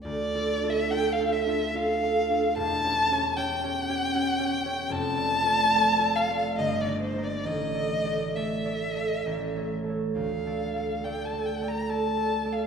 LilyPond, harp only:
\new Staff \with { instrumentName = "Harp" } { \time 3/4 \key d \minor \tempo 4 = 71 << { <d' f' a'>2. | r2. | r2. | r2. |
r2. | } \\ { \tuplet 3/2 { d,8 <d' f' a'>8 <d' f' a'>8 <d' f' a'>8 <d' f' a'>8 <d' f' a'>8 <d' f' a'>8 <d' f' a'>8 <d' f' a'>8 } | \tuplet 3/2 { <e,, e,>8 <cis' g' cis''>8 <cis' g' cis''>8 <cis' g' cis''>8 <cis' g' cis''>8 <cis' g' cis''>8 <cis' g' cis''>8 <cis' g' cis''>8 <cis' g' cis''>8 } | \tuplet 3/2 { <f,, f,>8 <a f' d''>8 <a f' d''>8 <a f' d''>8 <a f' d''>8 <a f' d''>8 g,,8 <bes ees' ees''>8 <bes ees' ees''>8 } | \tuplet 3/2 { a,,8 <a a' d''>8 <a a' d''>8 <a a' d''>8 <a a' d''>8 <a a' d''>8 a,,8 <a a' cis''>8 <a a' cis''>8 } |
\tuplet 3/2 { d,8 <a a' d''>8 <a a' d''>8 <a a' d''>8 <a a' d''>8 <a a' d''>8 <a a' d''>8 <a a' d''>8 <a a' d''>8 } | } >> }